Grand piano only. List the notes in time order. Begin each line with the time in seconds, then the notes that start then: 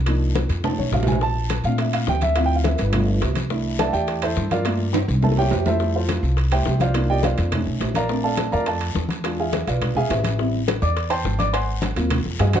0.07 F3 A#3 D4 D#4
0.64 A3 C#4 D#4 A5
0.79 C#5
0.94 F5
1.08 G#5
1.23 A5
1.65 A3 C4 D4 F5
1.80 E5
1.94 F5
2.09 G5
2.22 E5
2.36 F3 C4 E4 F5
2.46 G5
2.56 F5
2.65 E5
2.75 A#4
2.79 B4
2.93 A3 B3 F4
3.51 A3 D4 E4
3.80 A4 D5 E5 A5
3.89 F#5
3.93 G4 D5 E5 G5
4.23 E4 A4 C5 E5
4.52 F4 A#4 D5 F5
4.65 A3 A#3 F4
5.23 A#3 C#4 E4 A4 A5
5.38 G4 C#5 E5 G5
5.67 E4 A4 C5 E5
5.81 G3 A3 E4
5.95 F4 A4 C5 F5
6.52 G3 A3 E4 G4 C5 E5 G5
6.81 F4 C5 D5 F5
6.95 A#3 D4 D#4 F4
7.10 G4 D5 D#5 G5
7.25 F4 C5 D5 F5
7.53 A3 C#4 D#4
7.96 A#4 D5 F5 A#5
8.09 A3 C4 D4
8.24 A4 D5 F5 A5
8.52 A#4 D5 F5 A#5
8.68 A4 D5 F5 A5
9.24 G#3 D4 F4
9.40 G#4 E5 F5 G#5
9.68 F4 B4 D5 F5
9.97 G#4 E5 F5 G#5
10.11 E4 B4 E5
10.39 G3 C4 E4
10.82 D5 D6
11.10 C5 G5 A5 C6
11.39 D5 D6
11.53 C5 F#5 G#5 C6
11.96 F#3 A#3 C4 F4
12.40 G#4 D#5 F5 G#5
12.55 F#4 C5 D#5 F#5